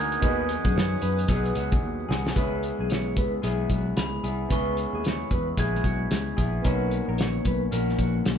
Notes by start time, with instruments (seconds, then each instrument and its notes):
Already playing: picked electric bass D2, synth keys A#3 E4 F#4 G#4 D#5, clean electric guitar B3 D#4 A#4, analog synth pad A#4 F#5 G#5 D#6
0.00 glockenspiel G#6
0.12 closed hi-hat, shaker
0.20 picked electric bass D#2, clean electric guitar D#3 F#3 B3 F#4 B4, synth keys B3 D#4 F#4 G#4, analog synth pad B4 D#6, kick, closed hi-hat, shaker
0.25 clean electric guitar G#4, synth keys D#5
0.38 shaker
0.49 closed hi-hat, shaker
0.65 picked electric bass F#2, clean electric guitar G#4, kick, closed hi-hat, shaker
0.76 clean electric guitar C#5, snare, shaker
0.93 shaker
1.02 picked electric bass F#2, clean electric guitar B4, closed hi-hat, shaker
1.19 closed hi-hat, shaker
1.28 picked electric bass B1, clean electric guitar F#3 B3 F#4 G#4, kick, closed hi-hat, shaker
1.45 closed hi-hat, shaker
1.55 picked electric bass C#2, clean electric guitar F#4, closed hi-hat
1.72 kick, closed hi-hat, shaker
1.83 picked electric bass D#2, shaker
2.00 shaker
2.09 picked electric bass C2, clean electric guitar B3 F#4 G#4, snare
2.26 snare, shaker
2.34 picked electric bass C#2, clean electric guitar C#3 G#3 B3 E4 B4, synth keys B3 E4 G#4, kick, closed hi-hat
2.38 clean electric guitar G#4, synth keys C#5
2.63 closed hi-hat
2.79 picked electric bass B1, clean electric guitar G#4
2.90 clean electric guitar C#5, snare, closed hi-hat
3.17 picked electric bass C#2, clean electric guitar B4, kick, closed hi-hat
3.42 picked electric bass B1, clean electric guitar G#3 B3 E4 G#4, closed hi-hat
3.70 picked electric bass B1, clean electric guitar F#4, kick, closed hi-hat
3.97 picked electric bass C#2, glockenspiel B5, snare, closed hi-hat
4.24 picked electric bass C2, clean electric guitar B3 E4 G#4, closed hi-hat
4.49 picked electric bass C#2, clean electric guitar C#3 G#3 B3 E4 B4, synth keys B3 E4 G#4, glockenspiel C#6, kick, closed hi-hat
4.53 clean electric guitar G#4, synth keys C#5
4.77 closed hi-hat
4.93 picked electric bass D#2, clean electric guitar G#4
5.04 clean electric guitar C#5, snare, closed hi-hat
5.31 picked electric bass E2, clean electric guitar B4, kick, closed hi-hat
5.57 picked electric bass A#1, clean electric guitar G#3 B3 E4 G#4, glockenspiel G#6, kick, closed hi-hat
5.75 snare
5.84 picked electric bass B1, clean electric guitar F#4, kick, closed hi-hat
6.11 picked electric bass C#2, snare, closed hi-hat
6.37 picked electric bass A#1, clean electric guitar B3 E4 G#4, kick, closed hi-hat
6.62 picked electric bass B1, clean electric guitar D#3 A#3 C#4, synth keys B3 D#4 A#4, kick, closed hi-hat
6.66 clean electric guitar F#4 B4, synth keys C#5
6.91 closed hi-hat
7.08 picked electric bass A#1, clean electric guitar A#4
7.18 clean electric guitar C#5, snare, closed hi-hat
7.45 picked electric bass B1, clean electric guitar B4, kick, closed hi-hat
7.71 picked electric bass A#1, clean electric guitar D#3 A#3 C#4 F#4 A#4, closed hi-hat
7.89 snare
7.98 picked electric bass A#1, clean electric guitar F#4, kick, closed hi-hat
8.25 picked electric bass B1, snare, closed hi-hat